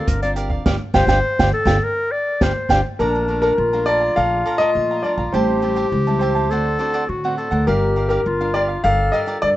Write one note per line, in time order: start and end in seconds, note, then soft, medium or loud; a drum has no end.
0.00 0.17 C4 medium
0.00 0.17 F4 medium
0.00 0.18 A#4 medium
0.00 0.21 A#4 medium
0.00 0.21 D5 medium
0.00 0.20 F5 medium
0.08 0.58 G1 medium
0.08 0.63 D3 medium
0.08 0.22 A#4 medium
0.08 kick medium
0.08 cross-stick medium
0.08 closed hi-hat medium
0.22 0.62 C4 medium
0.22 0.62 F4 medium
0.22 0.62 A#4 medium
0.22 0.35 A#4 soft
0.22 0.31 D5 medium
0.22 0.36 D5 soft
0.22 0.36 F5 medium
0.22 closed hi-hat soft
0.36 0.50 G4 medium
0.36 0.50 A#4 medium
0.36 0.49 D5 medium
0.36 0.48 F5 medium
0.36 closed hi-hat medium
0.50 0.65 A#4 soft
0.50 0.65 D5 medium
0.50 0.64 F5 medium
0.50 kick medium
0.66 0.77 G1 loud
0.66 0.76 D4 loud
0.66 0.76 F4 loud
0.66 0.76 G4 loud
0.66 0.76 D5 loud
0.66 0.75 F5 loud
0.66 0.76 G5 medium
0.66 kick medium
0.66 snare medium
0.94 1.06 G1 loud
0.94 1.04 D4 loud
0.94 1.04 F4 loud
0.94 1.04 G4 loud
0.94 1.50 C5 loud
0.94 1.04 D5 medium
0.94 1.04 F5 medium
0.94 1.04 G5 loud
0.94 kick medium
0.94 snare medium
1.07 1.19 G1 medium
1.07 1.18 D4 loud
1.07 1.19 F4 medium
1.07 1.19 G4 loud
1.07 1.19 D5 medium
1.07 1.19 F5 medium
1.07 1.19 G5 medium
1.07 kick medium
1.07 snare medium
1.39 1.51 G1 loud
1.39 1.49 D4 loud
1.39 1.49 F4 loud
1.39 1.49 G4 loud
1.39 1.49 D5 medium
1.39 1.49 F5 medium
1.39 1.49 G5 loud
1.39 kick medium
1.39 snare medium
1.53 1.85 A4 loud
1.65 1.78 G1 loud
1.65 1.77 D4 loud
1.65 1.77 F4 loud
1.65 1.77 G4 loud
1.65 1.77 D5 medium
1.65 1.77 F5 medium
1.65 1.77 G5 medium
1.65 kick medium
1.65 snare medium
1.83 2.13 A#4 loud
2.11 2.44 D5 loud
2.41 2.52 G1 loud
2.41 2.51 D4 medium
2.41 2.51 F4 medium
2.41 2.51 G4 medium
2.41 2.86 C5 medium
2.41 2.51 D5 medium
2.41 2.51 F5 medium
2.41 2.51 G5 medium
2.41 kick medium
2.41 snare medium
2.69 2.81 G1 medium
2.69 2.80 D4 loud
2.69 2.80 F4 loud
2.69 2.80 G4 loud
2.69 2.80 D5 medium
2.69 2.80 F5 medium
2.69 2.80 G5 loud
2.69 kick medium
2.69 snare medium
2.99 3.50 A#1 loud
2.99 3.56 A#2 medium
2.99 3.10 A3 medium
2.99 3.60 D4 loud
2.99 3.10 D4 medium
2.99 3.10 F4 medium
2.99 3.27 A4 medium
2.99 3.40 A#4 medium
2.99 3.28 D5 medium
2.99 3.29 F5 medium
2.99 3.29 A#5 medium
3.15 3.25 A3 medium
3.15 3.25 D4 medium
3.15 3.25 F4 medium
3.28 3.68 A3 medium
3.28 3.68 D4 medium
3.28 3.68 F4 medium
3.28 3.41 A4 soft
3.28 3.42 D5 medium
3.28 3.42 F5 soft
3.28 3.42 A#5 medium
3.42 3.52 A4 medium
3.42 3.84 A#4 loud
3.42 3.52 D5 medium
3.42 3.53 F5 medium
3.42 3.53 A#5 medium
3.58 4.08 A#1 medium
3.58 4.14 F3 medium
3.58 5.35 F4 loud
3.73 4.12 A3 medium
3.73 4.12 D4 medium
3.73 4.13 F4 medium
3.73 3.86 D5 soft
3.73 3.87 F5 soft
3.73 3.87 A#5 soft
3.86 4.01 A4 medium
3.86 4.14 D5 loud
3.86 4.01 D5 medium
3.86 4.00 F5 medium
3.86 3.99 A#5 medium
4.00 4.16 D5 soft
4.00 4.15 F5 soft
4.00 4.15 A#5 medium
4.16 4.42 A#1 medium
4.16 4.72 A#2 medium
4.16 4.56 A3 medium
4.16 4.56 D4 medium
4.16 4.57 F4 medium
4.16 4.44 A4 medium
4.16 4.45 D5 medium
4.16 4.57 F5 loud
4.16 4.46 F5 medium
4.16 4.46 A#5 medium
4.46 4.58 A4 medium
4.46 4.59 D5 medium
4.46 4.59 F5 medium
4.46 4.59 A#5 medium
4.58 4.99 A3 medium
4.58 5.00 F4 medium
4.58 4.69 A4 medium
4.58 4.70 D5 medium
4.58 5.00 D#5 loud
4.58 4.70 F5 medium
4.58 4.70 A#5 medium
4.75 5.00 A#2 medium
4.75 5.31 F3 medium
4.91 5.04 D5 soft
4.91 5.04 F5 soft
4.91 5.04 A#5 soft
5.03 5.23 A3 medium
5.03 5.23 D4 medium
5.03 5.23 F4 medium
5.03 5.18 A4 medium
5.03 5.10 D5 medium
5.03 5.18 D5 medium
5.03 5.17 F5 medium
5.03 5.16 A#5 medium
5.18 5.31 A#1 medium
5.18 5.33 D5 soft
5.18 5.32 F5 medium
5.18 5.32 A#5 medium
5.33 5.83 A1 loud
5.33 5.89 A2 medium
5.33 5.58 G3 medium
5.33 5.59 C4 medium
5.33 5.59 E4 medium
5.33 5.61 G4 medium
5.33 6.52 G4 loud
5.33 6.18 C5 medium
5.33 5.62 C5 medium
5.33 5.62 E5 medium
5.33 5.63 A5 medium
5.62 6.02 G3 medium
5.62 6.02 C4 medium
5.62 6.02 E4 medium
5.62 5.75 G4 medium
5.62 5.76 C5 medium
5.62 5.76 E5 medium
5.62 5.76 A5 medium
5.76 5.86 G4 medium
5.76 5.86 C5 medium
5.76 5.87 E5 medium
5.76 5.87 A5 medium
5.92 6.51 C#2 medium
5.92 6.48 E3 medium
6.07 6.48 G3 medium
6.07 6.49 C4 medium
6.07 6.49 E4 medium
6.07 6.21 C5 soft
6.07 6.21 E5 soft
6.07 6.21 A5 soft
6.19 6.35 G4 medium
6.19 7.04 C5 medium
6.19 6.35 C5 medium
6.19 6.34 E5 medium
6.19 6.34 A5 medium
6.35 6.50 C5 soft
6.35 6.49 E5 soft
6.35 6.49 A5 soft
6.50 6.76 D2 loud
6.50 7.06 D3 medium
6.50 6.68 A3 medium
6.50 6.68 C4 soft
6.50 6.78 D4 medium
6.50 6.68 F#4 medium
6.50 7.11 A4 loud
6.50 6.78 C5 medium
6.50 6.79 D5 medium
6.50 6.80 F#5 medium
6.79 7.07 A3 medium
6.79 7.07 C4 medium
6.79 6.92 D4 medium
6.79 7.07 F#4 medium
6.79 6.93 C5 medium
6.79 6.93 D5 medium
6.79 6.93 F#5 medium
6.93 7.03 D4 medium
6.93 7.03 C5 medium
6.93 7.03 D5 medium
6.93 7.04 F#5 medium
7.09 7.65 A2 medium
7.09 7.34 D3 medium
7.09 7.37 F#4 loud
7.24 7.48 A3 medium
7.24 7.49 C4 medium
7.24 7.49 F#4 medium
7.24 7.37 C5 soft
7.24 7.37 D5 medium
7.24 7.38 F#5 medium
7.38 7.51 D4 medium
7.38 7.69 A4 loud
7.38 7.52 C5 medium
7.38 7.51 D5 medium
7.38 7.50 F#5 medium
7.51 7.65 D2 loud
7.51 7.91 D4 medium
7.51 7.92 F4 medium
7.51 7.92 A#4 medium
7.51 7.66 C5 soft
7.51 7.66 D5 soft
7.51 7.65 F#5 medium
7.67 8.17 G1 loud
7.67 8.23 G3 medium
7.67 7.95 G4 medium
7.67 8.26 G4 loud
7.67 8.07 A#4 medium
7.67 7.95 A#4 medium
7.67 7.96 D5 medium
7.67 7.96 F5 medium
7.96 8.09 G4 medium
7.96 8.09 A#4 medium
7.96 8.09 D5 medium
7.96 8.10 F5 medium
8.09 8.35 D4 medium
8.09 8.35 F4 medium
8.09 8.20 G4 medium
8.09 8.51 A#4 loud
8.09 8.20 A#4 medium
8.09 8.36 A#4 medium
8.09 8.20 D5 medium
8.09 8.20 F5 medium
8.26 8.76 G1 medium
8.26 8.81 D3 medium
8.26 8.86 F4 loud
8.41 8.80 D4 medium
8.41 8.80 F4 medium
8.41 8.80 A#4 medium
8.41 8.54 A#4 soft
8.41 8.54 D5 soft
8.41 8.54 F5 medium
8.54 8.68 G4 medium
8.54 8.69 A#4 medium
8.54 8.61 D5 loud
8.54 8.68 D5 medium
8.54 8.67 F5 medium
8.68 8.83 A#4 soft
8.68 8.83 D5 soft
8.68 8.82 F5 medium
8.84 9.09 G1 loud
8.84 9.40 G3 medium
8.84 9.23 D4 medium
8.84 9.24 F4 medium
8.84 9.12 G4 medium
8.84 9.57 A4 loud
8.84 9.12 A#4 medium
8.84 9.13 D5 medium
8.84 9.11 F5 loud
8.84 9.13 F5 medium
9.12 9.26 G4 medium
9.12 9.27 A#4 medium
9.12 9.27 D5 medium
9.12 9.19 D#5 medium
9.12 9.27 F5 medium
9.26 9.52 D4 medium
9.26 9.52 F4 medium
9.26 9.37 G4 medium
9.26 9.52 A#4 medium
9.26 9.37 A#4 medium
9.26 9.37 D5 medium
9.26 9.37 F5 medium
9.42 9.57 G2 medium
9.42 9.57 D3 medium
9.42 9.49 D5 loud